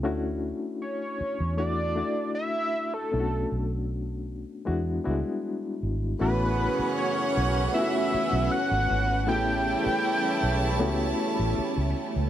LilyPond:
<<
  \new Staff \with { instrumentName = "Analog synth lead" } { \time 4/4 \key a \major \tempo 4 = 78 r4 cis''4 d''4 e''8. a'16~ | a'8. r2. r16 | b'4 cis''4 e''4 fis''4 | g''2. r4 | }
  \new Staff \with { instrumentName = "Violin section" } { \time 4/4 \key a \major r1 | r1 | <cis' b' fis''>1 | <e' cis'' a''>1 | }
  \new Staff \with { instrumentName = "Reed electric piano" } { \time 4/4 \key a \major <a cis' d' e' fis'>4. r8 <a d' e' fis'>8 <a d' e' fis'>4 r8 | <a b cis' d' e' fis'>4. r8 <gis b d' e' fis'>8 <g gis b d' e' fis'>4 r8 | <a b cis' e' fis'>4. r8 <a b cis' e' f' fis'>4. r8 | <a b cis' e' fis' g'>4. r8 <a b cis' e' fis' g'>4. r8 | }
  \new Staff \with { instrumentName = "String machine" } { \time 4/4 \key a \major << { r1 | r1 | <a b fis'>1 | <g a g'>1 | } \\ { r1 | r1 | <e cis'>1~ | <e cis'>1 | } >> }
  \new Staff \with { instrumentName = "Horn section" } { \clef bass \time 4/4 \key a \major r1 | r1 | <fis, cis e cis'>2.~ <fis, cis e cis'>8 r8 | <cis e a e'>2.~ <cis e a e'>8 r8 | }
  \new Staff \with { instrumentName = "Fingered electric bass" } { \clef bass \time 4/4 \key a \major d,8. r4 e,4 r4 r16 | b,,8 b,,4~ b,,16 r16 e,8 cis,16 r8. gis,,8 | a,,8. r8. b,,8 r8. b,,16 r16 gis,,16 gis,,8 | a,,8. r8. b,,8 cis,8 r16 a,,16 r16 cis,16 r16 cis,16 | }
>>